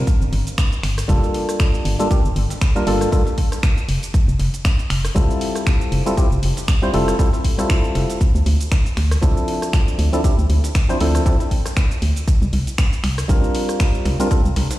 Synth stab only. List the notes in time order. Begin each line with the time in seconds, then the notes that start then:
1.08 G3 A#3 D4 F4 A4
1.99 G3 A#3 D4 F4 A4
2.10 G3 A#3 D4 F4 G4
2.75 G3 A#3 D4 F4 A#4
2.86 G3 A#3 D4 F4 A4
3.12 G3 A#3 D4 F4 A4
5.15 G3 C4 E4 F4 A4
6.06 G3 C4 E4 F4 A4
6.17 G3 C4 E4 F4 G4
6.82 G3 C4 E4 F4 C5
6.93 G3 C4 E4 F4 A4
7.19 G3 C4 E4 F4 A4
7.58 G3 C4 E4 F4 A4
9.22 F3 C4 D4 E4 A4
10.13 F3 C4 D4 E4 A4
10.24 F3 C4 D4 E4 G4
10.89 F3 C4 D4 E4 C5
11.00 F3 C4 D4 E4 A4
11.25 F3 C4 D4 E4 A4
13.28 G3 C4 D4 F4 A#4
14.19 G3 C4 D4 F4 A#4
14.31 C4 D4 F4 A4